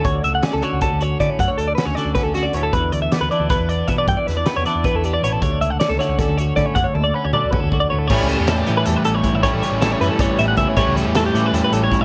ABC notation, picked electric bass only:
X:1
M:7/8
L:1/16
Q:1/4=157
K:D
V:1 name="Picked electric bass" clef=bass
D,,2 C,,2 z C,, z C,,2 D,,3 D, z | F,, z D,,2 z D,, z D,, z D,,3 D,,2 | E,,2 D,,2 z D,, z D,,2 E,,3 E, z | G,, z E,,2 z E,, z E,, z E,,3 A,,,2 |
D,,2 C,,2 z C,, z C,,2 D,,3 D, z | F,, z D,,2 z D,, z D,, z D,,3 D,,2 | A,,, C,,2 E,,3 A,,2 E,, z A,,,2 z A,,, | A,,, A,,, z A,,,3 F,, z G,,, z A,,,2 C,, z |
A,,, C,,2 E,,3 A,,2 E,, z A,,,2 z A,,, |]